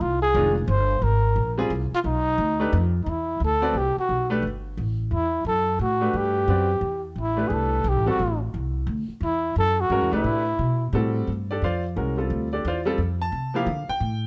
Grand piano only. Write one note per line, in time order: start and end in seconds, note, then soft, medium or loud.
0.35 0.54 D#3 medium
0.35 0.54 G#3 medium
0.35 0.54 D4 medium
0.35 0.54 F4 medium
1.58 1.69 G3 medium
1.58 1.69 C4 medium
1.58 1.70 F4 medium
1.58 1.70 G#4 medium
2.60 2.71 A3 medium
2.60 2.72 D4 medium
2.60 2.72 G4 medium
2.60 2.72 B4 medium
3.62 3.74 C4 medium
3.62 3.74 F#4 medium
3.62 3.74 B4 medium
3.62 3.74 D5 medium
4.30 4.42 A3 medium
4.30 4.42 D4 medium
4.30 4.42 G4 medium
4.30 4.42 B4 medium
6.01 6.45 A3 medium
6.01 6.46 D4 medium
6.01 6.46 G4 medium
6.01 6.46 B4 medium
6.48 6.67 C4 medium
6.48 6.67 F#4 soft
6.48 6.68 B4 medium
6.48 6.68 D5 medium
7.36 7.82 A3 medium
7.36 7.82 D4 medium
7.36 7.82 G4 medium
7.36 7.82 B4 medium
8.06 8.18 G3 medium
8.06 8.18 C4 medium
8.06 8.18 F#4 medium
8.06 8.18 A4 medium
9.90 10.09 G#3 medium
9.90 10.10 C#4 medium
9.90 10.10 F#4 medium
9.90 10.10 A#4 medium
10.12 10.41 A3 medium
10.12 10.42 D4 medium
10.12 10.42 G4 medium
10.12 10.42 B4 medium
10.93 11.27 G3 medium
10.93 11.28 C4 medium
10.93 11.28 F#4 medium
10.93 11.28 A4 medium
11.51 11.63 D4 medium
11.51 11.62 G4 medium
11.51 11.63 A4 medium
11.51 11.62 D5 medium
11.64 11.83 F4 medium
11.64 11.83 C5 medium
11.64 11.83 D5 medium
11.64 11.83 F5 medium
11.96 12.15 G#3 soft
11.96 12.15 C#4 soft
11.96 12.15 F#4 soft
11.96 12.16 A#4 medium
12.17 12.47 G3 soft
12.17 12.47 C4 soft
12.17 12.47 F4 soft
12.17 12.47 A4 medium
12.53 12.65 D4 medium
12.53 12.65 G4 soft
12.53 12.65 A4 soft
12.53 12.64 D5 medium
12.67 12.79 F4 medium
12.67 12.79 C5 medium
12.67 12.80 D5 medium
12.67 12.79 F5 medium
12.85 12.97 G3 medium
12.85 12.97 C4 medium
12.85 12.97 F4 medium
12.85 12.98 A4 medium
13.22 13.52 A5 medium
13.54 13.66 F3 medium
13.54 13.66 A#3 medium
13.54 13.66 E4 medium
13.54 13.66 G4 medium
13.54 13.87 F5 medium
13.89 14.27 G5 loud